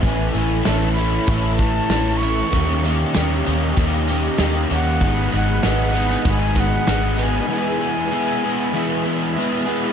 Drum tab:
HH |x-x-x-x-x-x-x-x-|x-x-x-x-x-x-x-x-|x-x-x-x-x-x-x-x-|----------------|
SD |----o-------o---|----o-------o---|----o--o----o---|----------------|
BD |o-------o-o-----|o-------o-------|o-------o-o-----|----------------|